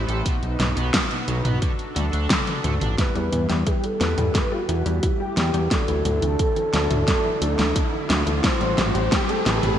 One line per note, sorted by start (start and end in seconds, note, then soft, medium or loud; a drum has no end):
0.00 0.23 A3 medium
0.00 0.23 E4 medium
0.00 0.23 G4 medium
0.00 1.58 B4 medium
0.00 0.23 C5 medium
0.09 0.23 A1 medium
0.09 0.21 A4 medium
0.09 closed hi-hat medium
0.26 0.34 B2 medium
0.26 1.61 D#4 medium
0.26 2.96 F#4 medium
0.26 kick loud
0.26 closed hi-hat medium
0.43 0.57 B1 medium
0.43 closed hi-hat soft
0.60 0.74 B1 medium
0.60 0.68 B2 medium
0.60 snare medium
0.60 closed hi-hat medium
0.60 mid tom medium
0.77 0.91 B1 medium
0.77 0.90 B3 loud
0.77 closed hi-hat medium
0.94 1.02 B2 medium
0.94 kick loud
0.94 snare loud
0.94 closed hi-hat medium
1.11 1.24 B2 medium
1.11 closed hi-hat soft
1.28 1.42 B1 medium
1.28 1.36 F#3 medium
1.28 closed hi-hat medium
1.45 1.59 B1 medium
1.45 1.58 B3 medium
1.45 closed hi-hat medium
1.45 mid tom loud
1.62 1.70 D3 medium
1.62 2.97 D4 medium
1.62 2.97 A4 medium
1.62 kick loud
1.62 closed hi-hat medium
1.79 closed hi-hat soft
1.96 2.10 D2 medium
1.96 2.05 D3 medium
1.96 closed hi-hat medium
1.96 high tom medium
2.13 2.28 D2 medium
2.13 2.26 D4 loud
2.13 closed hi-hat medium
2.30 2.39 D3 medium
2.30 kick loud
2.30 snare loud
2.30 closed hi-hat medium
2.30 mid tom medium
2.47 2.60 D3 medium
2.47 closed hi-hat soft
2.47 mid tom medium
2.64 2.79 D2 loud
2.64 2.73 A3 medium
2.64 closed hi-hat medium
2.64 mid tom medium
2.81 2.96 A1 medium
2.81 2.94 D4 medium
2.81 closed hi-hat medium
2.81 mid tom medium
2.98 3.15 E3 medium
2.98 5.68 G3 medium
2.98 3.97 G3 medium
2.98 5.68 B3 medium
2.98 3.97 B3 medium
2.98 8.40 E4 medium
2.98 3.97 E4 medium
2.98 3.68 B4 loud
2.98 3.97 B4 medium
2.98 kick loud
2.98 snare soft
2.98 closed hi-hat medium
2.98 riser medium
3.15 3.30 E2 medium
3.15 3.23 G3 loud
3.15 closed hi-hat soft
3.32 3.47 E2 medium
3.32 3.49 B3 medium
3.32 closed hi-hat medium
3.32 mid tom medium
3.49 3.64 E2 medium
3.49 3.63 G3 loud
3.49 snare soft
3.49 closed hi-hat medium
3.67 3.80 E3 loud
3.67 3.85 G4 loud
3.67 kick loud
3.67 closed hi-hat medium
3.84 3.97 G3 medium
3.84 4.36 A4 loud
3.84 closed hi-hat soft
4.01 4.15 E2 medium
4.01 4.65 G3 medium
4.01 4.17 B3 medium
4.01 4.65 B3 medium
4.01 4.65 E4 medium
4.01 4.65 B4 loud
4.01 snare soft
4.01 closed hi-hat medium
4.18 4.32 E2 medium
4.18 4.26 G3 medium
4.18 closed hi-hat medium
4.18 mid tom medium
4.35 4.51 E3 medium
4.35 4.51 B4 loud
4.35 kick loud
4.35 snare medium
4.35 closed hi-hat medium
4.52 4.60 G3 loud
4.52 5.05 F#4 loud
4.69 4.83 E2 medium
4.69 5.67 G3 medium
4.69 4.85 B3 medium
4.69 5.67 B3 medium
4.69 5.67 E4 medium
4.69 5.67 B4 medium
4.69 closed hi-hat medium
4.86 5.00 E2 medium
4.86 4.99 G3 loud
4.86 closed hi-hat medium
5.03 5.16 E3 loud
5.03 5.20 G4 medium
5.03 kick loud
5.03 closed hi-hat medium
5.20 5.33 G3 medium
5.20 5.73 G4 loud
5.37 5.51 E2 loud
5.37 5.53 B3 medium
5.37 snare medium
5.37 closed hi-hat medium
5.54 5.68 E2 medium
5.54 5.62 G3 medium
5.54 closed hi-hat medium
5.71 5.87 D3 medium
5.71 8.41 D3 medium
5.71 6.69 F#3 medium
5.71 8.41 D4 medium
5.71 6.69 D4 medium
5.71 6.69 E4 medium
5.71 8.41 F#4 medium
5.71 8.41 A4 medium
5.71 8.10 A4 loud
5.71 6.69 A4 medium
5.71 kick loud
5.71 snare medium
5.71 closed hi-hat medium
5.88 6.03 D2 medium
5.88 5.96 E3 loud
5.88 closed hi-hat soft
6.05 6.20 D2 medium
6.05 6.21 F#3 medium
6.05 closed hi-hat medium
6.05 mid tom medium
6.22 6.37 D2 medium
6.22 6.36 E3 loud
6.22 closed hi-hat medium
6.39 6.53 D3 loud
6.39 kick loud
6.39 closed hi-hat medium
6.56 6.70 E3 medium
6.56 closed hi-hat soft
6.73 6.88 D2 medium
6.73 6.90 F#3 medium
6.73 7.38 F#3 loud
6.73 7.38 D4 medium
6.73 7.38 E4 medium
6.73 7.38 A4 loud
6.73 snare medium
6.73 closed hi-hat medium
6.90 7.05 D2 medium
6.90 6.98 E3 medium
6.90 closed hi-hat medium
6.90 mid tom medium
7.07 7.24 D3 medium
7.07 kick loud
7.07 snare medium
7.07 closed hi-hat medium
7.25 7.33 E3 loud
7.42 7.56 D2 medium
7.42 8.40 F#3 medium
7.42 7.58 F#3 medium
7.42 8.40 D4 medium
7.42 8.40 E4 medium
7.42 8.40 A4 medium
7.42 closed hi-hat medium
7.59 7.73 D2 medium
7.59 7.72 E3 loud
7.59 snare medium
7.59 closed hi-hat medium
7.76 7.89 D3 loud
7.76 kick loud
7.76 closed hi-hat medium
7.93 8.06 E3 medium
8.10 8.24 D2 loud
8.10 8.26 F#3 medium
8.10 snare medium
8.10 closed hi-hat medium
8.27 8.41 D2 medium
8.27 8.35 E3 medium
8.27 closed hi-hat medium
8.44 8.60 E3 medium
8.44 9.42 G3 medium
8.44 9.79 A3 medium
8.44 9.42 C4 medium
8.44 9.79 C4 medium
8.44 9.42 E4 medium
8.44 9.79 G4 medium
8.44 9.42 A4 medium
8.44 9.08 C5 loud
8.44 kick loud
8.44 snare medium
8.44 closed hi-hat medium
8.61 8.75 A1 medium
8.61 8.69 G3 loud
8.61 closed hi-hat soft
8.78 8.92 A1 medium
8.78 8.94 A3 medium
8.78 snare medium
8.78 closed hi-hat medium
8.78 mid tom medium
8.95 9.09 A1 medium
8.95 9.08 G3 loud
8.95 closed hi-hat medium
9.12 9.25 E3 loud
9.12 9.30 G4 medium
9.12 kick loud
9.12 snare medium
9.12 closed hi-hat medium
9.29 9.42 G3 medium
9.29 9.47 A4 medium
9.29 closed hi-hat soft
9.46 9.61 A1 medium
9.46 9.79 G3 loud
9.46 9.62 A3 medium
9.46 9.79 C4 medium
9.46 9.79 E4 medium
9.46 9.79 A4 loud
9.46 9.79 B4 loud
9.46 snare medium
9.46 closed hi-hat medium
9.63 9.78 A1 medium
9.63 9.71 G3 medium
9.63 closed hi-hat medium
9.63 mid tom medium